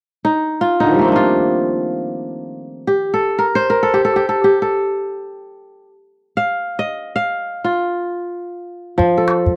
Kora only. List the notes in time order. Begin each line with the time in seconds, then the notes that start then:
0.25 D#4
0.61 F4
0.80 D3 D#4
0.87 D#3
0.91 F3 G3
0.99 A3 A#3
1.05 C4 D4
1.12 D#4 F4
2.87 G4
3.14 A4
3.39 A#4
3.55 C5
3.70 A#4
3.83 A4
3.94 G4
4.05 A4
4.16 G4
4.29 A4
4.44 G4
4.62 A4
6.37 F5
6.79 D#5
7.16 F5
7.64 F4
8.98 F3
9.18 A4